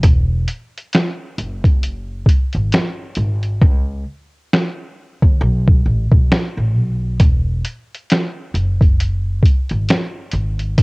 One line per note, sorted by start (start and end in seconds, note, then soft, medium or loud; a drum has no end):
0.03 0.44 E1 loud
0.03 kick loud
0.03 closed hi-hat loud
0.48 closed hi-hat medium
0.78 closed hi-hat soft
0.93 finger snap medium
0.93 snare loud
0.93 closed hi-hat medium
1.38 2.23 F#1 medium
1.38 closed hi-hat medium
1.64 kick medium
1.64 closed hi-hat soft
1.83 closed hi-hat medium
2.26 kick medium
2.26 closed hi-hat medium
2.53 2.70 G#1 medium
2.53 closed hi-hat soft
2.72 finger snap medium
2.72 snare loud
2.72 closed hi-hat medium
3.15 3.58 G#1 medium
3.15 closed hi-hat medium
3.43 closed hi-hat soft
3.61 4.02 C#2 loud
3.61 kick loud
4.53 finger snap medium
4.53 snare loud
5.22 5.39 D#2 medium
5.22 kick medium
5.41 5.81 B1 loud
5.68 kick loud
5.86 6.10 A1 medium
6.12 6.28 B1 medium
6.12 kick loud
6.32 finger snap medium
6.32 snare loud
6.57 6.75 A1 medium
6.75 7.16 B1 medium
7.20 7.61 E1 loud
7.20 kick loud
7.20 closed hi-hat loud
7.65 closed hi-hat medium
7.94 closed hi-hat soft
8.10 finger snap medium
8.10 snare loud
8.10 closed hi-hat medium
8.54 9.40 F#1 medium
8.54 closed hi-hat medium
8.81 kick loud
8.81 closed hi-hat soft
9.00 closed hi-hat medium
9.43 kick medium
9.43 closed hi-hat medium
9.69 9.87 G#1 medium
9.69 closed hi-hat soft
9.89 finger snap medium
9.89 snare loud
9.89 closed hi-hat medium
10.32 10.74 G#1 medium
10.32 closed hi-hat medium
10.59 closed hi-hat soft
10.78 10.83 C#2 loud
10.78 kick loud
10.78 closed hi-hat loud